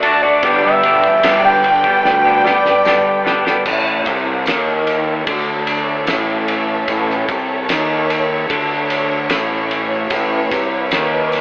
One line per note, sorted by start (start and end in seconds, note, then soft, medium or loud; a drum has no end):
0.00 0.40 D3 medium
0.00 0.25 A3 medium
0.00 0.40 A4 medium
0.00 3.61 D5 medium
0.00 0.22 A5 loud
0.00 ride medium
0.04 0.24 D4 medium
0.04 0.22 F#4 medium
0.22 0.42 A3 medium
0.22 0.42 D4 medium
0.22 0.41 F#4 medium
0.22 0.62 D5 loud
0.42 1.20 G1 loud
0.42 1.03 G2 loud
0.42 1.04 D3 loud
0.42 0.65 G3 loud
0.42 0.65 B3 loud
0.42 0.64 D4 loud
0.42 0.62 G4 loud
0.42 3.63 B4 medium
0.42 3.63 G5 loud
0.42 kick loud
0.42 ride medium
0.63 0.82 G3 medium
0.63 0.84 B3 medium
0.63 0.84 D4 medium
0.63 0.85 G4 medium
0.63 1.42 E5 loud
0.83 1.23 G3 medium
0.83 1.24 B3 medium
0.83 1.24 D4 medium
0.83 1.25 G4 medium
0.83 ride medium
1.04 kick medium
1.04 snare soft
1.23 2.01 G1 medium
1.23 1.84 G2 loud
1.23 1.84 D3 loud
1.23 1.46 G3 loud
1.23 1.45 B3 loud
1.23 1.44 D4 loud
1.23 1.43 G4 loud
1.23 snare loud
1.23 ride loud
1.23 tambourine medium
1.44 1.64 G3 medium
1.44 1.65 B3 medium
1.44 1.65 D4 medium
1.44 1.65 G4 medium
1.44 2.42 G5 loud
1.64 muted clean electric guitar stroke medium
1.64 ride medium
1.84 2.27 G3 medium
1.84 2.26 B3 medium
1.84 2.25 D4 medium
1.84 2.24 G4 medium
1.84 kick medium
2.05 2.42 D2 loud
2.05 snare medium
2.25 2.43 G3 medium
2.25 2.45 B3 medium
2.25 2.46 D4 medium
2.25 2.46 G4 medium
2.44 2.85 G3 medium
2.44 2.86 B3 medium
2.44 2.86 D4 medium
2.44 2.87 G4 medium
2.44 3.62 D5 loud
2.44 snare medium
2.66 snare medium
2.85 3.63 G2 loud
2.85 3.63 D3 medium
2.85 3.23 G3 loud
2.85 3.24 B3 loud
2.85 3.25 D4 loud
2.85 3.26 G4 loud
2.85 snare medium
2.85 tambourine medium
3.25 3.47 G3 medium
3.25 3.46 B3 medium
3.25 3.45 D4 medium
3.25 3.44 G4 medium
3.25 snare medium
3.45 3.64 G3 medium
3.45 3.64 B3 medium
3.45 3.64 D4 medium
3.45 3.63 G4 medium
3.45 snare medium
3.66 4.03 A1 medium
3.66 4.05 A2 loud
3.66 10.09 A4 medium
3.66 11.41 C#5 medium
3.66 11.41 E5 medium
3.66 kick medium
3.66 crash loud
3.66 tambourine medium
4.05 4.44 C2 medium
4.05 4.46 C3 loud
4.05 kick medium
4.05 ride medium
4.05 tambourine medium
4.46 5.23 D#2 medium
4.46 5.27 D#3 loud
4.46 snare loud
4.46 ride medium
4.46 tambourine loud
4.87 ride medium
4.87 tambourine medium
5.27 6.04 D2 medium
5.27 6.07 D3 loud
5.27 kick loud
5.27 ride medium
5.67 ride medium
5.67 tambourine medium
6.07 6.84 A1 medium
6.07 6.88 A2 loud
6.07 snare loud
6.07 ride medium
6.07 tambourine medium
6.48 ride medium
6.48 tambourine soft
6.88 7.26 A1 medium
6.88 7.28 A2 loud
6.88 kick medium
6.88 ride medium
6.88 tambourine medium
7.10 snare soft
7.28 7.66 C2 medium
7.28 7.69 C3 loud
7.28 kick loud
7.28 ride medium
7.28 tambourine medium
7.69 8.46 D#2 medium
7.69 8.49 D#3 loud
7.69 snare loud
7.69 ride medium
7.69 tambourine medium
8.10 ride medium
8.10 tambourine medium
8.49 9.27 D2 medium
8.49 9.29 D3 loud
8.49 kick loud
8.49 ride medium
8.90 ride medium
8.90 tambourine medium
9.30 10.08 A1 loud
9.30 10.10 A2 loud
9.30 snare loud
9.30 ride medium
9.30 tambourine medium
9.71 ride medium
9.71 tambourine soft
10.10 10.49 A1 medium
10.10 10.51 A2 loud
10.10 11.41 B4 medium
10.10 kick medium
10.10 ride medium
10.10 tambourine medium
10.51 10.90 C2 medium
10.51 10.92 C3 loud
10.51 kick loud
10.51 ride medium
10.51 tambourine medium
10.91 11.41 D#2 medium
10.91 11.41 D#3 loud
10.91 snare loud
10.91 ride medium
10.91 tambourine medium
11.32 snare soft
11.32 ride medium
11.32 tambourine medium